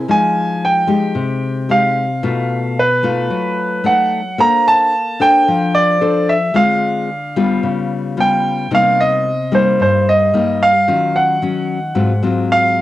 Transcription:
0.08 1.14 F3 medium
0.08 0.85 G#3 medium
0.08 0.85 D#4 soft
0.08 0.65 G#5 medium
0.65 1.74 G5 medium
0.87 1.65 G#3 medium
0.87 1.65 D#4 medium
0.87 1.65 G4 medium
1.15 2.21 C3 medium
1.69 2.04 G#3 soft
1.69 2.04 D#4 medium
1.69 2.05 G4 medium
1.69 2.82 F5 medium
2.23 3.29 B2 medium
2.23 2.77 A3 soft
2.23 2.77 D#4 soft
2.23 2.77 F4 medium
2.79 3.90 B4 medium
3.03 3.81 A3 medium
3.03 3.81 D#4 medium
3.03 3.81 F4 medium
3.30 4.36 F#3 medium
3.84 4.20 A3 medium
3.84 4.20 D#4 medium
3.84 4.42 F#5 medium
4.38 5.44 A#3 medium
4.38 4.93 D4 medium
4.38 4.93 A4 medium
4.38 4.93 C5 medium
4.38 4.68 A#5 loud
4.68 5.23 A5 loud
5.20 5.97 D4 medium
5.20 5.97 A4 medium
5.20 5.97 C5 medium
5.20 5.77 G5 loud
5.48 6.53 F3 medium
5.75 6.30 D5 loud
6.01 6.36 D4 medium
6.01 6.36 A4 medium
6.01 6.37 C5 medium
6.29 6.57 E5 medium
6.54 7.61 D3 medium
6.54 7.09 G#3 medium
6.54 7.09 C4 soft
6.54 7.09 F4 medium
6.54 7.60 F5 medium
7.36 8.13 G3 medium
7.36 8.13 B3 medium
7.36 8.14 F4 medium
7.63 8.69 C#3 medium
8.17 8.67 G3 soft
8.17 8.67 B3 medium
8.17 8.67 F4 medium
8.17 8.70 G5 medium
8.71 9.77 C3 medium
8.71 9.25 G3 medium
8.71 9.25 A#3 medium
8.71 9.25 D#4 medium
8.71 9.01 F5 medium
9.00 9.55 D#5 medium
9.52 10.29 G3 medium
9.52 10.29 A#3 medium
9.52 10.30 D#4 medium
9.52 9.80 C5 medium
9.80 10.85 G2 medium
9.80 10.09 C5 medium
10.09 10.64 D#5 medium
10.34 10.70 G3 medium
10.34 10.70 A#3 soft
10.34 10.71 D#4 medium
10.63 11.17 F5 medium
10.88 11.93 D#3 medium
10.88 11.38 F#3 medium
10.88 11.38 C#4 soft
10.88 11.38 F4 medium
11.16 12.20 F#5 medium
11.42 11.78 F#3 soft
11.42 11.79 C#4 medium
11.95 12.82 G#2 medium
11.95 12.12 F#3 medium
11.95 12.12 C4 soft
11.95 12.12 F4 medium
12.23 12.82 F#3 medium
12.23 12.82 C4 soft
12.23 12.82 F4 medium
12.52 12.82 F5 loud

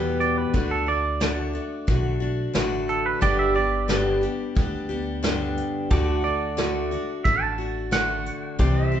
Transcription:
0.00 0.44 E2 medium
0.00 0.54 E2 medium
0.00 0.54 B2 medium
0.00 0.53 E3 medium
0.00 0.54 G3 medium
0.00 0.55 B3 medium
0.00 0.55 G4 medium
0.00 0.18 B4 loud
0.20 0.38 D5 medium
0.20 closed hi-hat medium
0.38 0.70 B4 medium
0.54 1.57 D2 medium
0.54 0.88 D3 medium
0.54 0.88 A3 medium
0.54 0.87 D4 medium
0.54 0.85 F#4 medium
0.54 kick loud
0.54 closed hi-hat medium
0.71 0.88 A4 medium
0.86 1.20 A3 soft
0.86 1.21 D4 soft
0.86 1.21 F#4 soft
0.86 2.18 D5 medium
1.20 1.55 D3 medium
1.20 1.55 A3 medium
1.20 1.54 D4 medium
1.20 1.52 F#4 medium
1.20 snare loud
1.20 closed hi-hat medium
1.53 1.87 A3 soft
1.53 1.88 D4 soft
1.53 1.88 F#4 soft
1.53 closed hi-hat medium
1.87 2.45 B1 medium
1.87 2.21 D3 medium
1.87 2.22 A3 medium
1.87 2.21 D4 medium
1.87 2.19 F#4 medium
1.87 kick loud
1.87 closed hi-hat medium
2.20 2.53 A3 medium
2.20 2.54 D4 medium
2.20 2.54 F#4 medium
2.54 3.12 A1 medium
2.54 3.20 D3 medium
2.54 3.22 A3 medium
2.54 3.22 D4 medium
2.54 3.23 F#4 medium
2.54 snare loud
2.54 closed hi-hat medium
2.89 3.06 A4 medium
2.89 closed hi-hat medium
3.06 3.22 B4 medium
3.21 4.25 G1 medium
3.21 3.55 G2 medium
3.21 3.56 D3 medium
3.21 3.56 G3 medium
3.21 3.56 B3 medium
3.21 3.55 D4 medium
3.21 5.88 G4 medium
3.21 3.53 G4 medium
3.21 5.89 B4 medium
3.21 3.39 D5 medium
3.21 5.89 D5 medium
3.21 kick loud
3.21 closed hi-hat medium
3.39 3.55 E5 medium
3.55 3.87 G3 soft
3.55 3.88 B3 soft
3.55 3.88 D4 soft
3.55 3.89 G4 medium
3.55 4.21 D5 medium
3.88 4.22 G2 medium
3.88 4.23 D3 medium
3.88 4.23 G3 medium
3.88 4.22 B3 medium
3.88 4.21 D4 medium
3.88 4.20 G4 medium
3.88 snare loud
3.88 closed hi-hat medium
4.21 4.54 G3 soft
4.21 4.55 B3 soft
4.21 4.56 D4 medium
4.21 4.56 G4 soft
4.21 closed hi-hat medium
4.55 5.60 D2 medium
4.55 4.90 G3 medium
4.55 4.90 B3 medium
4.55 4.89 D4 medium
4.55 4.88 G4 medium
4.55 kick loud
4.55 closed hi-hat medium
4.89 5.22 G3 medium
4.89 5.23 B3 medium
4.89 5.23 D4 medium
4.89 5.23 G4 medium
5.23 5.90 G2 medium
5.23 5.89 D3 medium
5.23 5.90 G3 medium
5.23 5.91 B3 medium
5.23 5.91 D4 medium
5.23 5.91 G4 medium
5.23 snare loud
5.23 closed hi-hat medium
5.58 closed hi-hat medium
5.91 6.94 D2 medium
5.91 6.24 D3 medium
5.91 6.25 A3 medium
5.91 6.24 D4 medium
5.91 6.23 F#4 medium
5.91 6.11 G4 medium
5.91 8.57 A4 medium
5.91 8.58 D5 medium
5.91 kick loud
5.91 closed hi-hat medium
6.11 8.57 F#4 medium
6.24 6.57 A3 soft
6.24 6.57 D4 soft
6.24 6.58 F#4 soft
6.24 7.22 D5 medium
6.57 6.91 D3 medium
6.57 6.91 A3 medium
6.57 6.92 D4 medium
6.57 6.90 F#4 medium
6.57 snare loud
6.57 closed hi-hat medium
6.91 7.24 A3 soft
6.91 7.25 D4 soft
6.91 7.25 F#4 medium
6.91 closed hi-hat medium
7.24 8.28 A1 medium
7.24 7.58 D3 medium
7.24 7.59 A3 medium
7.24 7.59 D4 medium
7.24 7.57 F#4 medium
7.24 7.42 E5 medium
7.24 kick loud
7.24 closed hi-hat medium
7.42 7.91 A5 medium
7.58 7.91 A3 soft
7.58 7.92 D4 soft
7.58 7.92 F#4 medium
7.91 8.59 D3 medium
7.91 8.59 A3 medium
7.91 8.60 D4 medium
7.91 8.60 F#4 medium
7.91 9.00 F#5 loud
7.91 snare loud
7.91 closed hi-hat medium
8.26 closed hi-hat medium
8.59 9.00 C2 medium
8.59 8.92 C3 medium
8.59 8.93 E3 medium
8.59 8.93 G3 medium
8.59 8.92 C4 medium
8.59 9.00 G4 medium
8.59 8.91 G4 medium
8.59 9.00 C5 medium
8.59 8.87 D5 medium
8.59 kick loud
8.59 closed hi-hat medium
8.87 9.00 E5 medium
8.92 9.00 G3 soft
8.92 9.00 C4 medium
8.92 9.00 G4 medium

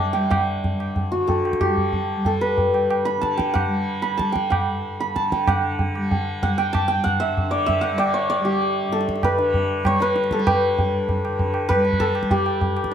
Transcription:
0.00 0.65 G2 medium
0.00 1.16 D3 medium
0.00 0.15 G3 medium
0.00 0.44 A4 medium
0.00 0.51 B4 medium
0.00 1.78 D5 medium
0.00 1.79 E5 medium
0.00 0.19 F#5 medium
0.00 1.82 A5 medium
0.13 1.66 G3 medium
0.13 0.36 G5 medium
0.13 tabla na medium
0.30 1.67 F#5 medium
0.30 tabla na loud
0.30 tabla ge medium
0.64 2.66 G2 medium
0.64 tabla tin medium
0.64 tabla ge medium
0.80 tabla na medium
0.96 tabla tin medium
0.96 tabla ge medium
1.12 1.67 F#4 medium
1.16 3.16 D3 medium
1.28 2.26 A4 medium
1.28 tabla tin medium
1.28 tabla ge medium
1.45 tabla na medium
1.53 tabla ke medium
1.61 3.60 G4 medium
1.61 tabla na medium
1.61 tabla ge medium
1.66 2.17 G3 medium
1.77 tabla ge medium
1.93 tabla tin medium
1.93 tabla ge medium
2.17 3.66 G3 medium
2.25 5.18 A4 medium
2.25 tabla tin medium
2.25 tabla ge medium
2.41 5.16 B4 medium
2.58 tabla tin medium
2.58 tabla ge medium
2.67 4.65 G2 medium
2.74 tabla na medium
2.90 tabla na medium
3.05 4.02 B5 medium
3.05 tabla te medium
3.17 5.15 D3 medium
3.21 4.17 A5 medium
3.21 tabla ke medium
3.37 3.60 G5 medium
3.37 tabla ke medium
3.54 4.38 F#5 medium
3.54 tabla na medium
3.54 tabla ge medium
3.66 4.17 G3 medium
4.02 5.00 B5 medium
4.02 tabla te medium
4.17 5.97 G3 medium
4.17 5.15 A5 medium
4.17 tabla ke medium
4.32 4.56 G5 medium
4.32 tabla ke medium
4.50 5.38 F#5 medium
4.50 tabla na medium
4.50 tabla ge medium
4.66 6.94 G2 medium
5.00 6.82 B5 medium
5.00 tabla te medium
5.15 5.48 D3 medium
5.15 6.72 A5 medium
5.15 tabla ke medium
5.32 5.54 G5 medium
5.32 tabla ke medium
5.47 7.43 D3 medium
5.47 6.42 F#5 medium
5.47 tabla na loud
5.47 tabla ge loud
5.79 tabla tin medium
5.79 tabla ge medium
5.95 6.45 G3 medium
5.95 tabla na medium
6.11 tabla tin medium
6.11 tabla ge medium
6.43 7.92 G3 medium
6.43 6.64 F#5 medium
6.43 tabla tin medium
6.43 tabla ge medium
6.58 6.88 G5 loud
6.58 tabla na medium
6.73 8.66 A5 loud
6.73 tabla na medium
6.73 tabla ge medium
6.88 7.10 G5 loud
6.94 8.88 G2 medium
7.04 7.81 F#5 loud
7.04 tabla tin medium
7.04 tabla ge medium
7.20 7.66 E5 medium
7.37 tabla tin medium
7.37 tabla ge medium
7.43 9.36 D3 medium
7.51 7.98 D5 medium
7.66 9.97 E5 loud
7.66 tabla tin medium
7.66 tabla ge medium
7.81 8.51 F#5 medium
7.81 tabla na medium
7.92 8.40 G3 medium
7.98 8.20 D5 loud
7.98 tabla na medium
8.14 8.36 C#5 medium
8.30 9.92 D5 medium
8.30 tabla tin medium
8.40 9.83 G3 medium
8.45 11.59 G4 medium
8.62 tabla tin medium
8.88 10.78 G2 medium
8.92 10.32 A4 medium
8.92 tabla te medium
9.01 tabla te medium
9.09 tabla ke medium
9.16 tabla te medium
9.23 10.01 B4 medium
9.23 tabla na medium
9.23 tabla ge medium
9.37 11.27 D3 medium
9.37 tabla te medium
9.54 tabla tin medium
9.54 tabla ge medium
9.83 10.32 G3 medium
9.83 12.42 C#5 loud
9.83 tabla na medium
9.83 tabla ge medium
10.01 10.46 B4 loud
10.01 tabla te medium
10.16 tabla te medium
10.24 tabla te medium
10.31 11.74 G3 medium
10.31 11.99 A4 medium
10.31 tabla ke medium
10.39 tabla te medium
10.47 11.68 B4 medium
10.47 tabla na loud
10.47 tabla ge loud
10.79 12.68 G2 medium
10.79 tabla tin medium
10.79 tabla ge medium
11.09 tabla tin medium
11.09 tabla ge medium
11.25 12.94 D3 medium
11.25 tabla na medium
11.39 tabla tin medium
11.39 tabla ge medium
11.54 tabla na medium
11.69 12.94 B4 loud
11.69 tabla na medium
11.69 tabla ge medium
11.74 12.22 G3 medium
11.85 tabla te medium
11.93 tabla ge medium
12.00 12.94 A4 loud
12.00 tabla tin medium
12.00 tabla ge medium
12.15 tabla na medium
12.22 12.94 G3 medium
12.22 tabla ke medium
12.31 12.94 G4 medium
12.31 tabla tin medium
12.31 tabla ge medium
12.46 tabla na medium
12.61 tabla tin medium
12.61 tabla ge medium
12.68 12.94 G2 medium
12.77 tabla na medium
12.84 tabla ke medium

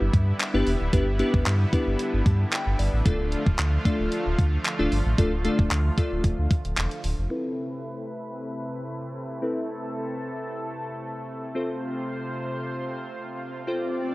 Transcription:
0.00 0.10 G1 loud
0.00 7.26 D3 medium
0.00 3.02 G3 medium
0.00 3.02 B3 medium
0.00 3.02 E4 medium
0.14 0.33 G2 loud
0.14 kick loud
0.14 closed hi-hat medium
0.40 clap loud
0.40 closed hi-hat medium
0.54 0.63 G1 loud
0.54 0.72 B3 loud
0.54 0.72 D4 medium
0.54 0.72 E4 medium
0.54 0.72 G4 medium
0.54 0.72 B4 loud
0.67 0.77 E1 loud
0.67 open hi-hat medium
0.81 0.90 D1 medium
0.93 1.23 G1 loud
0.93 1.06 B3 medium
0.93 1.06 D4 medium
0.93 1.06 E4 medium
0.93 1.06 G4 medium
0.93 1.06 B4 loud
0.93 kick loud
0.93 closed hi-hat loud
1.19 1.44 B3 medium
1.19 1.44 D4 medium
1.19 1.44 E4 medium
1.19 1.44 G4 medium
1.19 1.44 B4 loud
1.19 closed hi-hat medium
1.34 1.43 G1 medium
1.34 kick loud
1.46 1.66 G2 loud
1.46 clap loud
1.46 closed hi-hat loud
1.73 2.21 B3 medium
1.73 2.21 D4 medium
1.73 2.21 E4 medium
1.73 2.21 G4 medium
1.73 2.21 B4 loud
1.73 kick medium
1.73 closed hi-hat medium
1.87 1.96 G1 loud
1.99 closed hi-hat medium
2.14 2.23 G1 loud
2.26 2.45 G2 loud
2.26 2.51 A5 medium
2.26 kick loud
2.26 closed hi-hat medium
2.53 2.77 G5 medium
2.53 clap loud
2.53 closed hi-hat medium
2.67 2.76 G1 loud
2.79 2.89 G1 loud
2.79 3.04 D5 medium
2.79 open hi-hat medium
2.93 3.02 A1 medium
3.05 3.35 D1 loud
3.05 7.27 F3 medium
3.05 3.42 A3 medium
3.05 7.26 A3 medium
3.05 3.42 D4 medium
3.05 3.42 F4 medium
3.05 7.26 F4 medium
3.05 3.42 A4 medium
3.05 3.42 D5 loud
3.05 kick loud
3.05 closed hi-hat loud
3.32 closed hi-hat medium
3.46 3.55 D1 loud
3.46 kick loud
3.59 3.78 D2 loud
3.59 clap loud
3.59 closed hi-hat loud
3.85 4.28 A3 medium
3.85 4.28 D4 medium
3.85 4.28 F4 medium
3.85 4.28 A4 medium
3.85 4.28 D5 loud
3.85 kick medium
3.85 closed hi-hat medium
3.99 4.09 D1 loud
4.12 closed hi-hat medium
4.26 4.35 D1 loud
4.38 4.58 D2 loud
4.38 kick loud
4.38 closed hi-hat medium
4.65 clap loud
4.65 closed hi-hat medium
4.79 4.88 D1 medium
4.79 4.96 A3 loud
4.79 4.96 D4 medium
4.79 4.97 F4 medium
4.79 4.97 A4 medium
4.79 4.97 D5 loud
4.92 5.02 G1 loud
4.92 open hi-hat medium
5.06 5.15 A1 loud
5.18 5.48 D1 loud
5.18 5.31 A3 medium
5.18 5.31 D4 medium
5.18 5.31 F4 medium
5.18 5.31 A4 medium
5.18 5.31 D5 loud
5.18 kick loud
5.18 closed hi-hat loud
5.45 5.69 A3 medium
5.45 5.69 D4 medium
5.45 5.69 F4 medium
5.45 5.69 A4 medium
5.45 5.69 D5 loud
5.45 closed hi-hat medium
5.59 5.68 D1 medium
5.59 kick loud
5.71 5.91 D2 loud
5.71 clap loud
5.71 closed hi-hat loud
5.97 6.46 A3 medium
5.97 6.46 D4 medium
5.97 6.46 F4 medium
5.97 6.46 A4 medium
5.97 6.46 D5 loud
5.97 kick medium
5.97 closed hi-hat medium
6.12 6.21 D1 loud
6.24 6.34 D1 loud
6.24 kick medium
6.24 closed hi-hat medium
6.39 6.48 D2 medium
6.51 kick loud
6.51 closed hi-hat medium
6.65 6.74 D1 medium
6.65 closed hi-hat medium
6.77 6.88 E1 medium
6.77 clap loud
6.77 closed hi-hat medium
6.91 closed hi-hat soft
7.04 7.14 D1 loud
7.04 open hi-hat medium
7.18 7.27 F1 medium
7.30 11.51 C3 medium
7.30 14.15 A3 medium
7.30 9.39 C4 medium
7.30 9.39 E4 medium
7.30 11.51 E4 medium
7.30 9.39 A4 medium
7.30 9.41 B4 medium
7.30 9.39 B4 medium
9.42 11.51 C4 medium
9.42 11.51 E4 medium
9.42 11.51 A4 medium
9.42 11.53 A4 medium
9.42 11.51 B4 medium
11.55 14.15 C3 medium
11.55 13.63 C4 medium
11.55 13.64 F4 medium
11.55 14.15 F4 medium
11.55 13.64 A4 medium
11.55 13.66 C5 medium
11.55 13.64 C5 medium
11.55 swell medium
13.67 14.15 C4 medium
13.67 14.15 F4 medium
13.67 14.15 A4 medium
13.67 14.15 C5 medium
13.67 14.15 D5 medium

